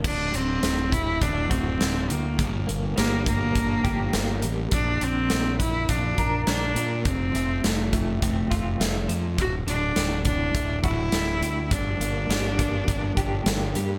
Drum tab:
CC |x-------|--------|--------|--------|
HH |-xxxxxxx|xxxxxxxx|xxxxxxxx|xxxxxxxx|
SD |--o---o-|--o---o-|--o---o-|--o---o-|
BD |o--ooo--|o--ooo--|o--ooo--|o--ooo--|

CC |--------|--------|
HH |xxxxxxxx|xxxxxxxx|
SD |--o---o-|--o---o-|
BD |o--ooo--|o--ooo--|